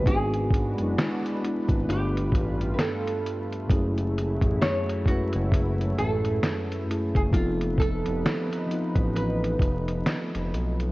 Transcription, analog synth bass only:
X:1
M:4/4
L:1/16
Q:"Swing 16ths" 1/4=66
K:F#m
V:1 name="Analog synth bass" clef=bass
G,,,3 F,,, z3 G,,, =G,,,2 A,,,2 z4 | F,,,3 A,,, z3 F,,,3 A,,,2 z3 F,,, | =F,,,3 F,,, z3 A,,,3 F,,,2 z F,,, B,,,2 |]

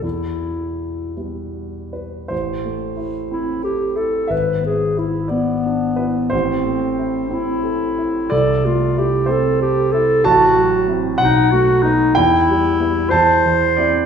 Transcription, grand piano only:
X:1
M:6/8
L:1/8
Q:3/8=60
K:Em
V:1 name="Grand piano"
z4 z B | [K:Am] c6 | e3 d2 B | c6 |
d3 c2 z | [K:Em] a3 f3 | g3 a2 d |]
V:2 name="Grand piano"
E,,3 [G,B,E]3 | [K:Am] A,,, A, E C A E | ^G,,, B, E B, D E | A,,, A, E C A E |
C,, A, E C A E | [K:Em] A,,, F, [CE] B,,, A, [B,^D] | E,, G, [B,E] E,, E, [CE] |]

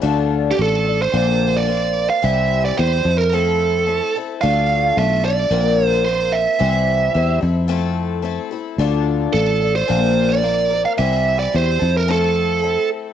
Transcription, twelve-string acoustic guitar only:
X:1
M:4/4
L:1/8
Q:1/4=110
K:Dm
V:1 name="Twelve-string acoustic guitar"
[D,A,DFA]2 [A,DFA] [DFA] [B,,D,B,CFc]2 [B,CFc]2 | [C,E,G,CEc]2 [G,CEc] [CEA] [F,A,CEA]2 [A,CEA] [CEA] | [D,A,DFA]2 [A,DFA] [DFA] [B,,D,B,CFB]2 [B,CFB]2 | [C,E,G,CEc]2 [G,CEc] [CEA] [F,A,CEA]2 [A,CEA] [CEA] |
[D,A,DFA]2 [A,DFA] [DFA] [B,,D,B,CFB]2 [B,CFB] [B,CFB] | [C,E,G,CEc]2 [G,CEc] [CEA] [F,A,CEA]2 [A,CEA]2 |]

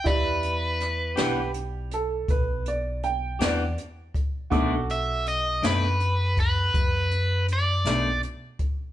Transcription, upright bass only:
X:1
M:12/8
L:1/8
Q:3/8=54
K:Em
V:1 name="Upright bass" clef=bass
E,,3 B,,,3 B,,,3 E,, z2 | B,,,3 F,,3 F,,3 B,,, z2 |]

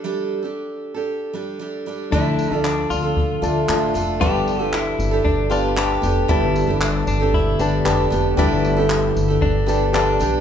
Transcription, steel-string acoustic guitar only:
X:1
M:4/4
L:1/16
Q:1/4=115
K:Gmix
V:1 name="Steel-string acoustic guitar"
[G,DGA]3 [DGA]4 [DGA]3 [G,DGA]2 [G,DGA]2 [G,DGA]2 | [D,A,DA]3 [DFA]4 [DFA]3 [A,DFA]2 [A,DFA]2 [A,DFA]2 | [G,B,DGA]3 [DGA]4 [DGA]3 [B,DGA]2 [B,DGA]2 [B,DGA]2 | [G,B,DGA]3 [DGA]4 [DGA]3 [B,DGA]2 [B,DGA]2 [B,DGA]2 |
[G,B,DGA]3 [DGA]4 [DGA]3 [B,DGA]2 [B,DGA]2 [B,DGA]2 |]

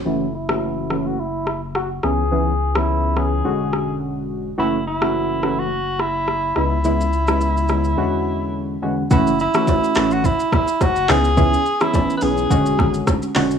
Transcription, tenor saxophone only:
X:1
M:4/4
L:1/16
Q:"Swing 16ths" 1/4=106
K:F#m
V:1 name="Tenor saxophone"
E2 E4- E F E2 E2 F2 G2- | G3 E3 G6 z4 | E2 E4- E F3 E4 E2- | E12- E2 z2 |
E2 E4- E F E2 E2 F2 G2- | G3 E2- E/2 B/2 G6 z4 |]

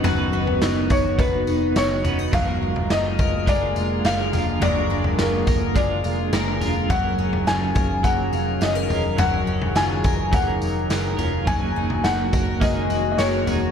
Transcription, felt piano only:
X:1
M:4/4
L:1/16
Q:1/4=105
K:D#m
V:1 name="Felt piano"
z6 c2 B4 c3 z | e4 d4 =d4 e3 z | =d4 A4 d6 z2 | f4 g4 f4 d3 z |
f4 g4 f6 z2 | g4 f4 d3- d/2 d/2 c4 |]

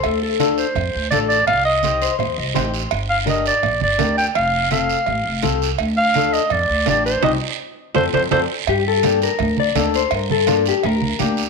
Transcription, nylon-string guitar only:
X:1
M:4/4
L:1/8
Q:1/4=167
K:Gm
V:1 name="Nylon-string guitar"
z2 [DFA] z3 [DFA] z | z2 [EGc] z3 [EGc] z | z2 [DGB] z3 [DGB] z | z2 [CFA] z3 [CFA] z |
z2 [DFA] z3 [DFG] z | [CEG] z3 [CFA] [CFA] [CFA] z | z2 [B,DG] z3 [B,DA] z | z2 [B,DF] z3 [B,DG] z |]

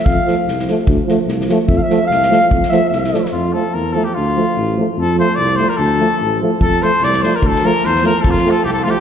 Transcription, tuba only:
X:1
M:2/4
L:1/8
Q:"Swing 16ths" 1/4=147
K:F
V:1 name="Tuba" clef=bass
F,, z C,,2 | D,, z C,,2 | F,, z C,,2 | F,, z C,,2 |
F,,2 E,,2 | D,,2 A,,,2 | F,,2 C,,2 | D,,2 A,,,2 |
F,,2 C,,2 | D,,2 E,,2 | F,,2 C,,2 |]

